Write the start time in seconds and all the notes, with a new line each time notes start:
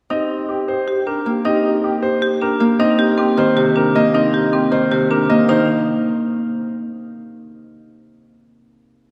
0.10 C4 D#4 G4 D#5
0.30 G4
0.49 G4
0.68 G4 C5
0.87 G4
1.07 D4 G4 A#4
1.26 A#3 G4
1.45 C4 D#4 G4 D#5
1.64 G4
1.83 G4
2.02 G4 C5
2.22 G4
2.41 D4 G4 A#4
2.60 A#3
2.79 C4 D#4 D#5
2.99 G4
3.18 C4 G4
3.37 D#3 C5
3.57 C3 G4
3.76 D4 A#4
3.95 A#3 D#5
4.14 C4 D#4 D#5
4.34 G4
4.53 C4 G4
4.72 D#3 C5
4.91 C3 G4
5.11 D4 A#4
5.30 A#3 D#5
5.48 D#3 D#4 C5